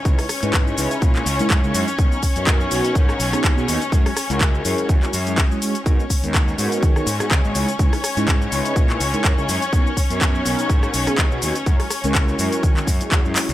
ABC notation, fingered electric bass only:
X:1
M:4/4
L:1/16
Q:"Swing 16ths" 1/4=124
K:B
V:1 name="Fingered electric bass" clef=bass
C,, z2 G,,2 z C,, z A,, z C,, z F,, C, F,, z | B,,, z2 F,,2 z B,,, z G,, z B,,, z D,, B,, D,, z | F,, z2 C,,2 z F,, z E,, z F,,2 z4 | G,, z2 D,,2 z G,, z D, z G,, z C, G,,, C,, z |
C,, z2 G,,2 z C,, z A,, z C,, z F,, C, F,, z | B,,, z2 F,,2 z B,,, z G,, z B,,, z D,, B,, D,, z | F,, z2 C,,2 z F,, z D, z F,, z E,, F,, z C,, |]